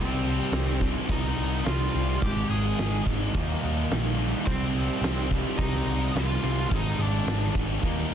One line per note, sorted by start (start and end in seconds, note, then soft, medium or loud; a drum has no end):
0.00 0.38 C2 medium
0.00 0.79 C3 medium
0.00 0.79 G3 medium
0.00 0.78 C4 medium
0.00 0.80 C4 loud
0.00 0.79 D#4 medium
0.00 0.78 C5 loud
0.24 crash medium
0.52 0.93 C2 loud
0.52 snare loud
0.52 crash medium
0.67 snare soft
0.80 2.21 C3 medium
0.80 2.21 G3 medium
0.80 2.20 C4 medium
0.80 2.24 D#4 medium
0.80 kick medium
0.80 crash medium
1.08 1.30 C2 loud
1.08 1.62 D#4 medium
1.08 1.62 D#5 medium
1.08 kick loud
1.08 crash loud
1.37 1.58 C2 medium
1.37 crash medium
1.65 1.86 C2 medium
1.65 2.20 C3 medium
1.65 2.21 G3 medium
1.65 2.21 C4 medium
1.65 2.18 F4 medium
1.65 2.23 F5 medium
1.65 snare loud
1.65 crash medium
1.94 2.15 C2 loud
1.94 2.21 C3 medium
1.94 2.21 G3 medium
1.94 2.20 C4 medium
1.94 crash medium
2.21 2.42 G#1 medium
2.21 3.04 G#2 medium
2.21 3.05 D#3 loud
2.21 3.05 G#3 loud
2.21 3.05 C4 loud
2.21 3.05 D#4 medium
2.21 2.48 G4 medium
2.21 2.50 G5 loud
2.21 kick loud
2.21 crash medium
2.49 2.70 G#1 medium
2.49 3.02 G#4 medium
2.49 3.02 G#5 loud
2.49 crash medium
2.78 2.99 G#1 loud
2.78 snare loud
2.78 crash medium
3.06 3.27 G#1 medium
3.06 3.34 G#2 medium
3.06 3.33 D#3 medium
3.06 3.33 G#3 medium
3.06 3.33 C4 medium
3.06 3.37 D#4 medium
3.06 kick medium
3.06 crash medium
3.34 3.55 D#2 loud
3.34 4.17 D#3 medium
3.34 4.17 G3 loud
3.34 4.18 A#3 loud
3.34 4.17 D#4 loud
3.34 kick loud
3.34 crash medium
3.64 3.84 D#2 medium
3.64 crash medium
3.91 4.31 A#1 medium
3.91 snare loud
3.91 crash medium
4.18 4.45 D#3 medium
4.18 4.45 G3 medium
4.18 4.45 A#3 medium
4.18 4.48 D#4 medium
4.18 crash medium
4.45 4.87 C2 loud
4.45 5.28 C3 medium
4.45 5.29 G3 medium
4.45 5.26 C4 loud
4.45 5.29 C4 loud
4.45 5.29 D#4 loud
4.45 5.26 C5 loud
4.45 kick loud
4.45 crash medium
4.75 crash medium
5.01 5.42 C2 medium
5.01 snare loud
5.01 crash medium
5.29 6.70 C3 medium
5.29 6.69 G3 medium
5.29 6.69 C4 medium
5.29 6.72 D#4 medium
5.29 kick medium
5.29 crash medium
5.58 5.79 C2 loud
5.58 6.10 D#4 medium
5.58 6.16 D#5 medium
5.58 kick loud
5.58 crash medium
5.74 snare soft
5.86 6.06 C2 medium
5.86 crash medium
6.14 6.35 C2 medium
6.14 6.68 C3 medium
6.14 6.69 G3 medium
6.14 6.70 C4 loud
6.14 6.67 F4 medium
6.14 6.73 F5 loud
6.14 snare loud
6.14 crash loud
6.41 6.63 C2 loud
6.41 6.69 C3 medium
6.41 6.69 G3 medium
6.41 6.68 C4 medium
6.41 crash medium
6.69 6.91 G#1 medium
6.69 7.52 G#2 medium
6.69 7.52 D#3 medium
6.69 7.53 G#3 medium
6.69 7.53 C4 loud
6.69 7.53 D#4 loud
6.69 6.98 D#4 medium
6.69 kick loud
6.69 crash loud
6.76 7.02 D#5 loud
6.99 7.19 G#1 medium
6.99 7.52 D4 medium
6.99 7.52 D5 medium
6.99 crash medium
7.27 7.47 G#1 loud
7.27 snare loud
7.27 crash medium
7.43 snare soft
7.54 7.75 G#1 medium
7.54 7.82 G#2 medium
7.54 7.80 D#3 medium
7.54 7.81 G#3 medium
7.54 7.81 C4 medium
7.54 7.84 D#4 medium
7.54 kick medium
7.54 crash medium
7.81 8.03 D#2 loud
7.81 8.14 D#3 medium
7.81 8.14 G3 medium
7.81 8.14 A#3 medium
7.81 8.14 D#4 loud
7.81 kick loud
7.81 crash medium
7.97 snare soft
8.10 crash medium